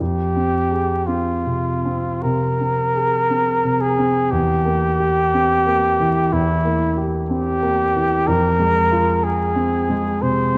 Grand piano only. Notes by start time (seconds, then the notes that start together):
0.00 F2
0.36 C4
0.71 G#4
1.08 C4
1.46 C3
1.85 C4
2.24 C3
2.60 C4
2.95 G#4
3.30 C4
3.64 C3
3.99 C4
4.32 E2
4.65 A#3
4.99 G4
5.34 C4
5.66 A#3
6.00 E3
6.32 E2
6.65 A#3
6.97 G4
7.30 C4
7.63 A#3
7.95 E3
8.28 F2
8.59 G#3
8.91 F4
9.23 G#4
9.56 C4
9.89 G#3
10.22 C3
10.54 G#3